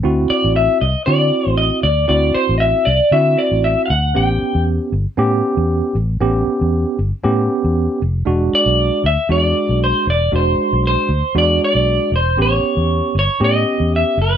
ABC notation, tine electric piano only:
X:1
M:4/4
L:1/8
Q:"Swing 16ths" 1/4=117
K:Amix
V:1 name="Tine electric piano"
[=CEF]3 z [CEF]3 z | [=CEF]3 z [CEF]3 z | [B,CG]3 z [B,CG]3 z | [B,CG]3 z [B,CG]3 z |
[^G,DF]3 z [G,DF]3 z | [^G,DF]3 z [G,DF]3 z | [B,CG]3 z [B,CG]3 z |]